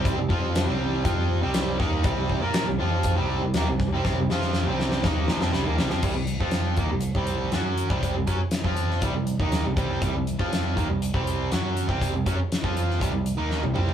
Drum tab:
CC |----------------|----------------|----------------|x---------------|
HH |x---x---x---x---|x---x---x---x---|----------------|--x-x-x-x-x-x-x-|
SD |----o-------o-o-|----o-------o-o-|o-ooo-ooo-ooo-oo|----o-------o---|
T1 |----------------|----------------|----------------|----------------|
T2 |----------------|----------------|----------------|----------------|
FT |----------------|----------------|----------------|----------------|
BD |o-o-----o-----o-|o-o-----o-----o-|o-------o-------|o--o--o--o-----o|

CC |----------------|----------------|----------------|
HH |x-x-x-x-x-x-x-x-|x-x-x-x-x-x-x-x-|x-x-x-x-x-x-----|
SD |----o--o----o---|----o-------o---|----o--o----o---|
T1 |----------------|----------------|-------------o--|
T2 |----------------|----------------|--------------o-|
FT |----------------|----------------|---------------o|
BD |o-o--o--o--o--o-|o--o--o--o-----o|o-o--o--o-------|